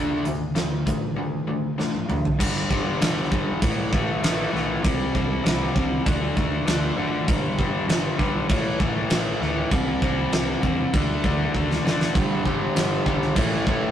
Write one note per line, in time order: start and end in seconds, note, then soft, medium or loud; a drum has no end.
0.00 0.23 D2 medium
0.00 0.23 D3 medium
0.00 0.24 A3 medium
0.00 0.24 D4 loud
0.25 0.54 D2 medium
0.25 0.53 D3 medium
0.25 0.53 A3 medium
0.25 closed hi-hat medium
0.55 0.85 D2 medium
0.55 0.83 D3 medium
0.55 0.83 A3 medium
0.55 snare loud
0.55 closed hi-hat medium
0.86 1.15 A1 medium
0.86 1.14 D3 medium
0.86 1.14 A3 medium
0.86 kick medium
0.86 closed hi-hat medium
1.16 1.45 D3 medium
1.16 1.44 A3 medium
1.47 1.75 D3 medium
1.47 1.75 A3 medium
1.78 2.06 D3 medium
1.78 2.06 A3 medium
1.78 snare medium
1.95 high tom medium
2.09 2.37 D3 medium
2.09 2.37 A3 medium
2.09 mid tom medium
2.25 floor tom medium
2.39 2.62 G1 medium
2.39 2.68 G2 loud
2.39 2.69 D3 loud
2.39 2.70 G3 loud
2.39 kick loud
2.39 crash loud
2.39 crash medium
2.70 2.92 G1 loud
2.70 2.99 G2 medium
2.70 3.00 D3 loud
2.70 3.01 G3 loud
2.70 kick medium
3.00 3.23 G1 medium
3.00 3.30 G2 medium
3.00 3.31 D3 loud
3.00 3.31 G3 loud
3.00 snare loud
3.00 crash medium
3.31 3.54 G1 medium
3.31 3.60 G2 medium
3.31 3.60 D3 medium
3.31 3.61 G3 medium
3.31 kick medium
3.62 3.84 A1 loud
3.62 3.91 A2 medium
3.62 3.92 E3 medium
3.62 3.92 A3 loud
3.62 kick loud
3.62 crash medium
3.92 4.14 A1 medium
3.92 4.21 A2 medium
3.92 4.22 E3 medium
3.92 4.23 A3 loud
3.92 kick loud
4.22 4.44 A1 loud
4.22 4.51 A2 medium
4.22 4.52 E3 medium
4.22 4.52 A3 medium
4.22 snare loud
4.22 crash medium
4.52 4.75 B1 loud
4.52 4.82 A2 medium
4.52 4.82 E3 medium
4.52 4.82 A3 loud
4.52 snare soft
4.83 5.06 C2 medium
4.83 5.13 C3 medium
4.83 5.13 G3 loud
4.83 5.14 C4 loud
4.83 kick loud
4.83 crash medium
5.14 5.37 C2 medium
5.14 5.43 C3 loud
5.14 5.44 G3 loud
5.14 5.44 C4 loud
5.14 kick medium
5.44 5.67 C2 loud
5.44 5.73 C3 loud
5.44 5.74 G3 medium
5.44 5.75 C4 loud
5.44 snare loud
5.44 crash medium
5.75 5.98 C2 medium
5.75 6.04 C3 medium
5.75 6.04 G3 medium
5.75 6.05 C4 medium
5.75 kick loud
6.05 6.28 D2 medium
6.05 6.35 D3 medium
6.05 6.36 A3 loud
6.05 6.36 D4 loud
6.05 kick loud
6.05 crash medium
6.36 6.59 D2 loud
6.36 6.65 D3 medium
6.36 6.66 A3 loud
6.36 6.66 D4 loud
6.36 kick medium
6.66 6.89 D2 medium
6.66 6.96 D3 medium
6.66 6.96 A3 medium
6.66 6.97 D4 medium
6.66 snare loud
6.66 crash medium
6.97 7.19 F#1 loud
6.97 7.26 D3 medium
6.97 7.26 A3 medium
6.97 7.26 D4 medium
7.27 7.50 G1 medium
7.27 7.57 G2 loud
7.27 7.58 D3 loud
7.27 7.58 G3 loud
7.27 kick loud
7.27 crash medium
7.58 7.80 G1 loud
7.58 7.87 G2 loud
7.58 7.87 D3 loud
7.58 7.88 G3 loud
7.58 kick medium
7.88 8.10 G1 loud
7.88 8.17 G2 medium
7.88 8.18 D3 loud
7.88 8.18 G3 loud
7.88 snare loud
7.88 crash medium
8.18 8.41 B1 medium
8.18 8.47 G2 medium
8.18 8.48 D3 medium
8.18 8.48 G3 medium
8.18 kick loud
8.49 8.71 A1 medium
8.49 8.78 A2 medium
8.49 8.79 E3 loud
8.49 8.80 A3 loud
8.49 kick loud
8.49 crash medium
8.80 9.02 A1 medium
8.80 9.08 A2 medium
8.80 9.09 E3 loud
8.80 9.10 A3 medium
8.80 kick loud
9.10 9.32 A1 loud
9.10 9.39 A2 medium
9.10 9.40 E3 medium
9.10 9.41 A3 loud
9.10 snare loud
9.10 crash medium
9.40 9.62 D2 medium
9.40 9.69 A2 medium
9.40 9.70 E3 medium
9.40 9.70 A3 medium
9.40 snare soft
9.71 9.93 C2 loud
9.71 10.01 C3 loud
9.71 10.02 G3 loud
9.71 10.03 C4 loud
9.71 kick loud
9.71 crash medium
10.02 10.24 C2 loud
10.02 10.32 C3 medium
10.02 10.33 G3 loud
10.02 10.33 C4 loud
10.02 kick medium
10.32 10.54 C2 medium
10.32 10.62 C3 medium
10.32 10.63 G3 medium
10.32 10.63 C4 loud
10.32 snare loud
10.32 crash medium
10.63 10.85 E2 loud
10.63 10.92 C3 medium
10.63 10.92 G3 medium
10.63 10.92 C4 loud
10.63 kick medium
10.94 11.15 D2 medium
10.94 11.23 D3 medium
10.94 11.24 A3 loud
10.94 11.24 D4 loud
10.94 kick loud
10.94 crash medium
11.24 11.45 D2 medium
11.24 11.53 D3 medium
11.24 11.54 A3 loud
11.24 11.54 D4 loud
11.24 kick loud
11.54 11.76 D2 medium
11.54 11.84 D3 medium
11.54 11.84 A3 medium
11.54 11.85 D4 medium
11.54 kick medium
11.71 snare medium
11.85 12.07 F#1 medium
11.85 12.13 D3 medium
11.85 12.13 A3 medium
11.85 12.14 D4 loud
11.85 snare medium
12.01 snare loud
12.15 12.36 G1 medium
12.15 12.43 G2 loud
12.15 12.44 D3 loud
12.15 12.45 G3 loud
12.15 kick loud
12.15 crash medium
12.45 12.67 G1 loud
12.45 12.74 G2 medium
12.45 12.75 D3 loud
12.45 12.76 G3 loud
12.45 kick medium
12.75 12.97 G1 medium
12.75 13.04 G2 loud
12.75 13.05 D3 medium
12.75 13.05 G3 loud
12.75 snare loud
12.75 crash medium
13.05 13.28 B1 medium
13.05 13.34 G2 medium
13.05 13.34 D3 medium
13.05 13.35 G3 loud
13.05 kick medium
13.22 snare soft
13.36 13.58 A1 medium
13.36 13.65 A2 medium
13.36 13.66 E3 loud
13.36 13.66 A3 loud
13.36 kick loud
13.36 crash medium
13.66 13.88 A1 medium
13.66 13.91 A2 medium
13.66 13.91 E3 medium
13.66 13.91 A3 medium
13.66 kick loud